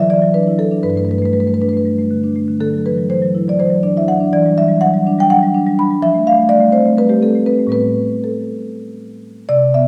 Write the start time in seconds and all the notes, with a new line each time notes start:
Already playing: D3 F#3
0.00 E5
0.10 E3 D5
0.22 F#3
0.34 D4 B4
0.47 E4
0.58 F#3 A4
0.72 D4
0.83 G2 B4
0.90 B4
0.96 A3 B4
1.05 B4
1.09 G3 B4
1.18 A3 B4
1.26 B4
1.33 G3 B4
1.40 B4
1.47 A3 B4
1.54 B4
1.61 D4 B4
1.69 B4
1.73 A3 B4
1.86 G3
1.99 A3
2.11 D3
2.24 D4
2.36 A3
2.48 D3
2.60 D3 A4
2.73 F#3
2.86 E3 B4
2.98 F#3
3.10 E3 C5
3.22 F#3
3.35 E4
3.48 F#3 D5
3.59 E3 C5
3.70 F#3
3.83 D4 D5
3.97 E4 E5
4.08 F#3 F#5
4.20 D4
4.33 E3 D5
4.46 G3
4.58 F#3 E5
4.68 G3
4.81 F#3 F#5
4.94 G3
5.07 D4
5.19 G3 G5
5.30 F#3 F#5
5.42 G3
5.54 D4
5.67 G3
5.79 D4 B5
5.91 G3
6.02 F3 E5
6.14 A3
6.27 G3 F5
6.38 A3
6.49 G3 D5
6.60 A3
6.72 C4 C5
6.86 A3
6.98 G3 B4
7.09 A3 G4
7.22 C4 A4
7.35 A3
7.46 C4 B4
7.59 A3
7.67 A2 G3 B3
7.72 B4
8.24 A4
9.49 C3 D5
9.74 B3 E5